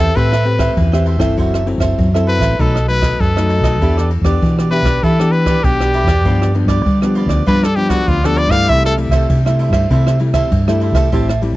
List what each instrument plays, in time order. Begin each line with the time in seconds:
Already playing: fingered electric bass E2, nylon-string guitar E3 C4 G4 B4, trumpet A4, cavaquinho G5
0.00 cavaquinho C5 E5
0.15 fingered electric bass A2, nylon-string guitar A3 C4 G4 B4, cavaquinho A4 C5 E5 G5, trumpet B4, kick, ride
0.32 cavaquinho C5 E5 G5, cross-stick
0.45 nylon-string guitar C4 G4 B4, muted cavaquinho stroke, ride
0.59 cavaquinho C5 E5 G5, kick, cross-stick, ride
0.77 fingered electric bass E2, nylon-string guitar E3, kick, ride
0.92 nylon-string guitar C4 G4 B4, cavaquinho C5 E5 G5, cross-stick
1.05 cavaquinho A4 C5 E5 G5, ride
1.17 fingered electric bass G1, nylon-string guitar C4 E4 A4, cavaquinho E5 G5, kick, cross-stick, ride
1.22 cavaquinho C5
1.37 fingered electric bass F#1, nylon-string guitar F#3, cavaquinho F#4 A4 C5 E5, kick, ride
1.54 cavaquinho A4 C5 E5, cross-stick
1.67 nylon-string guitar C4 E4 A4, muted cavaquinho stroke, ride
1.78 fingered electric bass F#1, cavaquinho C5 E5, kick, cross-stick, ride
1.82 cavaquinho A4
1.98 fingered electric bass F#2, nylon-string guitar F#3, kick, ride
2.14 nylon-string guitar C4 E4 A4, cavaquinho A4 C5 E5, cross-stick
2.27 cavaquinho F#4 A4 C5 E5, trumpet B4, ride
2.39 fingered electric bass A1, cavaquinho C5 E5, kick, cross-stick, ride
2.43 cavaquinho A4
2.59 fingered electric bass B1, nylon-string guitar B2 F#3 A3 D#4, cavaquinho D#4 A4 B4 D#5, trumpet A4, kick, ride
2.75 cavaquinho A4 B4 D#5, cross-stick
2.88 nylon-string guitar F#3 A3 D#4, trumpet B4, muted cavaquinho stroke, ride
3.02 cavaquinho A4 B4 D#5, kick, cross-stick, ride
3.20 nylon-string guitar F#2, fingered electric bass F#2, trumpet A4, kick, ride
3.36 nylon-string guitar F#3 A3 D#4, cavaquinho A4 B4 D#5, cross-stick
3.49 cavaquinho D#4 A4 B4 D#5, ride
3.61 fingered electric bass B1, cavaquinho D#5, kick, cross-stick, ride
3.65 cavaquinho A4 B4
3.81 fingered electric bass E2, nylon-string guitar E3 B3 D4 G4, cavaquinho E4 G4 B4 D5, kick, ride
3.97 cavaquinho G4 B4 D5, cross-stick
4.10 muted cavaquinho stroke, ride
4.22 fingered electric bass E2, nylon-string guitar B3 D4 G4, cavaquinho D5, kick, cross-stick, ride
4.26 cavaquinho G4 B4
4.42 nylon-string guitar B2, fingered electric bass E3, kick, ride
4.58 cavaquinho G4 B4 D5, cross-stick
4.71 nylon-string guitar B3 D4 G4, cavaquinho E4 G4 B4 D5, trumpet B4, ride
4.82 fingered electric bass B1, cavaquinho B4 D5, kick, cross-stick, ride
4.87 cavaquinho G4
5.03 fingered electric bass E3, nylon-string guitar E3, cavaquinho E4 G4 B4 D5, trumpet A4, kick, ride
5.19 nylon-string guitar B3 D4 G4, cavaquinho G4 B4 D5, cross-stick
5.32 trumpet B4, muted cavaquinho stroke, ride
5.46 cavaquinho G4 B4 D5, kick, cross-stick, ride
5.64 fingered electric bass B1, nylon-string guitar B2 B3 D4 G4, trumpet G4, kick, ride
5.80 cavaquinho G4 B4 D5, cross-stick
5.93 cavaquinho E4 G4 B4 D5, ride
6.04 fingered electric bass E2, cavaquinho D5, kick, cross-stick, ride
6.09 cavaquinho G4 B4
6.25 fingered electric bass G2, nylon-string guitar G2 F3 B3 D4, cavaquinho F4 G4 B4 D5, kick, ride
6.42 cavaquinho G4 B4 D5, cross-stick
6.54 nylon-string guitar F3 B3 D4, muted cavaquinho stroke, ride
6.65 fingered electric bass G2, cavaquinho D5, kick, cross-stick, ride
6.69 cavaquinho G4 B4
6.86 nylon-string guitar D3, fingered electric bass G3, kick, ride
7.02 nylon-string guitar F3 B3 D4, cavaquinho G4 B4 D5, cross-stick
7.15 cavaquinho F4 G4 B4 D5, ride
7.26 fingered electric bass D2, cavaquinho D5, kick, cross-stick, ride
7.30 cavaquinho G4 B4
7.46 nylon-string guitar G2 F3 B3 D4, fingered electric bass G3, cavaquinho F4 G4 B4 D5, trumpet B4, kick, ride
7.63 cavaquinho G4 B4 D5, trumpet A4, cross-stick
7.76 nylon-string guitar F3 B3 D4, trumpet G4, muted cavaquinho stroke, ride
7.89 trumpet F#4, cavaquinho G4 B4 D5, kick, cross-stick, ride
8.08 fingered electric bass D2, nylon-string guitar D3, trumpet F4, kick, ride
8.23 nylon-string guitar F3 B3 D4, cavaquinho G4 B4 D5, trumpet A4, cross-stick
8.36 cavaquinho F4 G4 B4 D5, trumpet D5, ride
8.48 fingered electric bass G2, nylon-string guitar G3 A3, cavaquinho G4 B4 D5, trumpet F5, kick, cross-stick, ride
8.53 nylon-string guitar E4
8.68 fingered electric bass C2, nylon-string guitar C3, cavaquinho E4 A4 C5 E5, trumpet E5, kick, ride
8.84 trumpet A4, cavaquinho A4 C5 E5, cross-stick
8.97 nylon-string guitar G3 A3 E4, muted cavaquinho stroke, ride
9.09 fingered electric bass C2, cavaquinho C5 E5, kick, cross-stick, ride
9.14 cavaquinho A4
9.29 nylon-string guitar G2, fingered electric bass C3, kick, ride
9.46 nylon-string guitar G3 A3 E4, cavaquinho A4 C5 E5, cross-stick
9.59 cavaquinho E4 A4 C5 E5, ride
9.70 fingered electric bass G2, cavaquinho E5, kick, cross-stick, ride
9.74 cavaquinho A4 C5
9.90 nylon-string guitar C3 G3 A3 E4, fingered electric bass C3, cavaquinho E4 A4 C5 E5, kick, ride
10.06 cavaquinho A4 C5 E5, cross-stick
10.19 nylon-string guitar G3 A3 E4, muted cavaquinho stroke, ride
10.34 cavaquinho A4 C5 E5, kick, cross-stick, ride
10.51 nylon-string guitar G2, fingered electric bass G2, kick, ride
10.68 nylon-string guitar G3 A3 E4, cavaquinho A4 C5 E5, cross-stick
10.80 cavaquinho E4 A4 C5 E5, ride
10.92 fingered electric bass C2, cavaquinho C5 E5, kick, cross-stick, ride
10.97 cavaquinho A4
11.12 fingered electric bass A1, nylon-string guitar A2 G3 C4 E4, cavaquinho G4 C5 E5 A5, kick, ride
11.29 cavaquinho C5 E5 A5, cross-stick
11.42 nylon-string guitar G3 C4 E4, muted cavaquinho stroke, ride
11.53 fingered electric bass A1